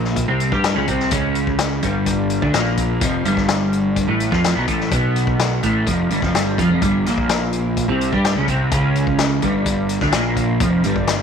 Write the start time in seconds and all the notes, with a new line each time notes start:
Already playing: A#1 A#2
0.04 snare
0.16 kick, closed hi-hat
0.28 C2 C3
0.40 closed hi-hat
0.52 G2 G3, kick
0.64 snare, closed hi-hat
0.76 C#2 C#3
0.88 C2 C3, kick, closed hi-hat
1.00 snare
1.11 C#2 C#3, kick, closed hi-hat
1.35 closed hi-hat
1.47 kick
1.59 snare, closed hi-hat
1.82 G1 G2, kick, closed hi-hat
2.06 kick, closed hi-hat
2.30 closed hi-hat
2.42 D2 D3, kick
2.54 A#1 A#2, snare, closed hi-hat
2.77 kick, closed hi-hat
3.01 F1 F2, kick, closed hi-hat
3.25 G1 G2, closed hi-hat
3.37 kick, snare
3.48 snare, closed hi-hat
3.73 closed hi-hat
3.96 kick, closed hi-hat
4.08 A1 A2
4.20 closed hi-hat
4.32 F2 F3, kick, snare
4.44 snare, closed hi-hat
4.56 B1 B2
4.68 A1 A2, kick, closed hi-hat
4.80 snare
4.92 B1 B2, kick, closed hi-hat
5.16 closed hi-hat
5.27 kick
5.39 snare, closed hi-hat
5.63 A1 A2, kick, closed hi-hat
5.87 F1 F2, kick, closed hi-hat
6.10 G1 G2, closed hi-hat
6.22 F1 F2, kick, snare
6.35 G1 G2, snare, closed hi-hat
6.58 F2 F3, kick, closed hi-hat
6.70 F1 F2
6.82 G1 G2, kick, closed hi-hat
7.06 A#1 A#2, snare, closed hi-hat
7.18 kick
7.29 snare, closed hi-hat
7.53 closed hi-hat
7.77 kick, closed hi-hat
7.88 C2 C3
8.01 closed hi-hat
8.13 G2 G3, kick
8.25 snare, closed hi-hat
8.35 C#2 C#3
8.48 C2 C3, kick, closed hi-hat
8.71 C#2 C#3, kick, closed hi-hat
8.95 closed hi-hat
9.07 kick
9.18 snare, closed hi-hat
9.42 G1 G2, kick, closed hi-hat
9.66 kick, closed hi-hat
9.89 closed hi-hat
10.01 D2 D3, kick, snare
10.12 A#1 A#2, snare, closed hi-hat
10.37 kick, closed hi-hat
10.60 F1 F2, kick, closed hi-hat
10.84 G1 G2, closed hi-hat
10.96 kick
11.07 snare, closed hi-hat